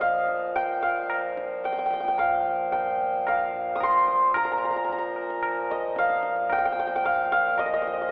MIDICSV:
0, 0, Header, 1, 4, 480
1, 0, Start_track
1, 0, Tempo, 539568
1, 19, Time_signature, 4, 2, 24, 8
1, 7219, End_track
2, 0, Start_track
2, 0, Title_t, "Santur"
2, 0, Program_c, 0, 15
2, 0, Note_on_c, 0, 75, 76
2, 0, Note_on_c, 0, 79, 91
2, 9, Note_on_c, 0, 77, 81
2, 170, Note_off_c, 0, 79, 0
2, 495, Note_on_c, 0, 79, 85
2, 730, Note_off_c, 0, 77, 0
2, 734, Note_on_c, 0, 77, 74
2, 1464, Note_off_c, 0, 79, 0
2, 1468, Note_on_c, 0, 79, 69
2, 1531, Note_off_c, 0, 79, 0
2, 1535, Note_on_c, 0, 79, 55
2, 1585, Note_off_c, 0, 79, 0
2, 1588, Note_on_c, 0, 79, 60
2, 1650, Note_off_c, 0, 79, 0
2, 1652, Note_off_c, 0, 75, 0
2, 1654, Note_on_c, 0, 79, 57
2, 1716, Note_off_c, 0, 79, 0
2, 1719, Note_on_c, 0, 79, 54
2, 1777, Note_off_c, 0, 79, 0
2, 1781, Note_on_c, 0, 79, 54
2, 1847, Note_off_c, 0, 79, 0
2, 1851, Note_on_c, 0, 79, 59
2, 1942, Note_off_c, 0, 77, 0
2, 1946, Note_on_c, 0, 77, 73
2, 2417, Note_off_c, 0, 79, 0
2, 2420, Note_on_c, 0, 79, 72
2, 2915, Note_off_c, 0, 77, 0
2, 2918, Note_on_c, 0, 77, 71
2, 3341, Note_on_c, 0, 87, 75
2, 3410, Note_on_c, 0, 84, 89
2, 3881, Note_on_c, 0, 82, 78
2, 3954, Note_off_c, 0, 82, 0
2, 3957, Note_on_c, 0, 82, 58
2, 4015, Note_off_c, 0, 82, 0
2, 4018, Note_on_c, 0, 82, 60
2, 4070, Note_off_c, 0, 82, 0
2, 4073, Note_on_c, 0, 82, 50
2, 4132, Note_off_c, 0, 82, 0
2, 4136, Note_on_c, 0, 82, 53
2, 4181, Note_off_c, 0, 82, 0
2, 4185, Note_on_c, 0, 82, 50
2, 4233, Note_off_c, 0, 82, 0
2, 4237, Note_on_c, 0, 82, 56
2, 4273, Note_off_c, 0, 79, 0
2, 4306, Note_off_c, 0, 82, 0
2, 4309, Note_on_c, 0, 82, 50
2, 4375, Note_off_c, 0, 82, 0
2, 4379, Note_on_c, 0, 82, 54
2, 4431, Note_off_c, 0, 82, 0
2, 4434, Note_on_c, 0, 82, 61
2, 4738, Note_off_c, 0, 87, 0
2, 4891, Note_off_c, 0, 77, 0
2, 4957, Note_off_c, 0, 84, 0
2, 5080, Note_on_c, 0, 75, 74
2, 5324, Note_on_c, 0, 77, 83
2, 5803, Note_on_c, 0, 79, 86
2, 5851, Note_off_c, 0, 79, 0
2, 5855, Note_on_c, 0, 79, 66
2, 5915, Note_off_c, 0, 79, 0
2, 5919, Note_on_c, 0, 79, 75
2, 5976, Note_off_c, 0, 79, 0
2, 5979, Note_on_c, 0, 79, 65
2, 6040, Note_off_c, 0, 79, 0
2, 6044, Note_on_c, 0, 79, 74
2, 6094, Note_off_c, 0, 82, 0
2, 6109, Note_off_c, 0, 79, 0
2, 6113, Note_on_c, 0, 79, 60
2, 6185, Note_off_c, 0, 79, 0
2, 6189, Note_on_c, 0, 79, 74
2, 6272, Note_off_c, 0, 77, 0
2, 6275, Note_on_c, 0, 77, 88
2, 6509, Note_off_c, 0, 77, 0
2, 6512, Note_on_c, 0, 77, 93
2, 6747, Note_off_c, 0, 75, 0
2, 6751, Note_on_c, 0, 75, 86
2, 6809, Note_off_c, 0, 75, 0
2, 6812, Note_on_c, 0, 75, 54
2, 6877, Note_off_c, 0, 75, 0
2, 6881, Note_on_c, 0, 75, 67
2, 6952, Note_off_c, 0, 75, 0
2, 6955, Note_on_c, 0, 75, 54
2, 6999, Note_off_c, 0, 75, 0
2, 7003, Note_on_c, 0, 75, 50
2, 7055, Note_off_c, 0, 75, 0
2, 7059, Note_on_c, 0, 75, 44
2, 7128, Note_off_c, 0, 75, 0
2, 7132, Note_on_c, 0, 75, 57
2, 7190, Note_off_c, 0, 75, 0
2, 7219, Note_off_c, 0, 77, 0
2, 7219, Note_off_c, 0, 79, 0
2, 7219, End_track
3, 0, Start_track
3, 0, Title_t, "Harmonium"
3, 0, Program_c, 1, 20
3, 0, Note_on_c, 1, 46, 69
3, 0, Note_on_c, 1, 53, 79
3, 3838, Note_off_c, 1, 46, 0
3, 3844, Note_off_c, 1, 53, 0
3, 3852, Note_on_c, 1, 46, 72
3, 3857, Note_on_c, 1, 53, 81
3, 7219, Note_off_c, 1, 46, 0
3, 7219, Note_off_c, 1, 53, 0
3, 7219, End_track
4, 0, Start_track
4, 0, Title_t, "Tabla"
4, 7, Note_on_c, 9, 62, 68
4, 96, Note_off_c, 9, 62, 0
4, 249, Note_on_c, 9, 62, 51
4, 338, Note_off_c, 9, 62, 0
4, 498, Note_on_c, 9, 63, 65
4, 587, Note_off_c, 9, 63, 0
4, 975, Note_on_c, 9, 60, 73
4, 1064, Note_off_c, 9, 60, 0
4, 1222, Note_on_c, 9, 37, 61
4, 1311, Note_off_c, 9, 37, 0
4, 1461, Note_on_c, 9, 62, 73
4, 1550, Note_off_c, 9, 62, 0
4, 1576, Note_on_c, 9, 62, 59
4, 1665, Note_off_c, 9, 62, 0
4, 1696, Note_on_c, 9, 37, 69
4, 1785, Note_off_c, 9, 37, 0
4, 1820, Note_on_c, 9, 62, 57
4, 1909, Note_off_c, 9, 62, 0
4, 1939, Note_on_c, 9, 63, 74
4, 1939, Note_on_c, 9, 64, 58
4, 2027, Note_off_c, 9, 63, 0
4, 2027, Note_off_c, 9, 64, 0
4, 2427, Note_on_c, 9, 63, 70
4, 2427, Note_on_c, 9, 64, 69
4, 2516, Note_off_c, 9, 63, 0
4, 2516, Note_off_c, 9, 64, 0
4, 2906, Note_on_c, 9, 60, 64
4, 2906, Note_on_c, 9, 64, 67
4, 2995, Note_off_c, 9, 60, 0
4, 2995, Note_off_c, 9, 64, 0
4, 3145, Note_on_c, 9, 64, 59
4, 3234, Note_off_c, 9, 64, 0
4, 3384, Note_on_c, 9, 60, 72
4, 3384, Note_on_c, 9, 64, 68
4, 3473, Note_off_c, 9, 60, 0
4, 3473, Note_off_c, 9, 64, 0
4, 3629, Note_on_c, 9, 62, 62
4, 3718, Note_off_c, 9, 62, 0
4, 3863, Note_on_c, 9, 60, 92
4, 3863, Note_on_c, 9, 64, 89
4, 3952, Note_off_c, 9, 60, 0
4, 3952, Note_off_c, 9, 64, 0
4, 4348, Note_on_c, 9, 63, 77
4, 4348, Note_on_c, 9, 64, 58
4, 4437, Note_off_c, 9, 63, 0
4, 4437, Note_off_c, 9, 64, 0
4, 4591, Note_on_c, 9, 60, 52
4, 4680, Note_off_c, 9, 60, 0
4, 4716, Note_on_c, 9, 37, 56
4, 4804, Note_off_c, 9, 37, 0
4, 4827, Note_on_c, 9, 60, 76
4, 4827, Note_on_c, 9, 64, 67
4, 4916, Note_off_c, 9, 60, 0
4, 4916, Note_off_c, 9, 64, 0
4, 5077, Note_on_c, 9, 64, 57
4, 5166, Note_off_c, 9, 64, 0
4, 5303, Note_on_c, 9, 62, 81
4, 5392, Note_off_c, 9, 62, 0
4, 5424, Note_on_c, 9, 62, 58
4, 5513, Note_off_c, 9, 62, 0
4, 5540, Note_on_c, 9, 37, 64
4, 5629, Note_off_c, 9, 37, 0
4, 5660, Note_on_c, 9, 62, 58
4, 5749, Note_off_c, 9, 62, 0
4, 5778, Note_on_c, 9, 60, 72
4, 5778, Note_on_c, 9, 64, 62
4, 5867, Note_off_c, 9, 60, 0
4, 5867, Note_off_c, 9, 64, 0
4, 6264, Note_on_c, 9, 63, 80
4, 6264, Note_on_c, 9, 64, 69
4, 6353, Note_off_c, 9, 63, 0
4, 6353, Note_off_c, 9, 64, 0
4, 6740, Note_on_c, 9, 60, 73
4, 6740, Note_on_c, 9, 64, 62
4, 6829, Note_off_c, 9, 60, 0
4, 6829, Note_off_c, 9, 64, 0
4, 6978, Note_on_c, 9, 64, 56
4, 7067, Note_off_c, 9, 64, 0
4, 7219, End_track
0, 0, End_of_file